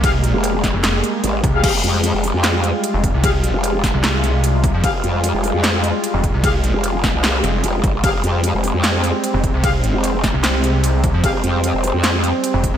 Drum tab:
CC |--------|x-------|--------|--------|
RD |x-x-x-x-|x-x-x-x-|x-x-x-x-|x-x-x-x-|
HH |xxxoxxxx|xxxoxxxx|xxxoxxxx|xxxoxxxx|
CP |----x---|----x---|----x---|----x---|
SD |---oo---|----o---|---oo---|----o---|
BD |o--o---o|o------o|o--o---o|o------o|

CC |--------|--------|--------|--------|
RD |x-x-x-x-|x-x-x-x-|x-x-x-x-|x-x-x-x-|
HH |xxxoxxxx|xxxoxxxx|xxxoxxxx|xxxoxxxx|
CP |----x---|----x---|----x---|----x---|
SD |---oo---|----o---|---oo---|----o---|
BD |o--o---o|o------o|o--o---o|o------o|